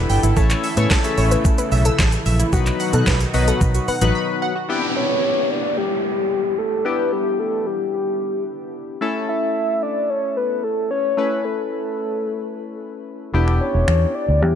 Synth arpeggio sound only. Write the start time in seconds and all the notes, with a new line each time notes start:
0.10 G5
0.23 E4
0.37 C#3
0.64 E5
0.77 E6
0.91 A5
1.18 C#5
1.31 E5
1.45 C#3
1.58 E4
1.72 E5
1.85 E6
1.99 A5
2.26 E5
2.39 E4
2.53 D#3
2.80 F#5
2.93 F#6
3.07 B5
3.34 D#5
3.48 F#5
3.61 D#3
3.75 F#4
3.88 F#5
4.02 F#6
4.15 B5
4.42 F#5
4.56 F#4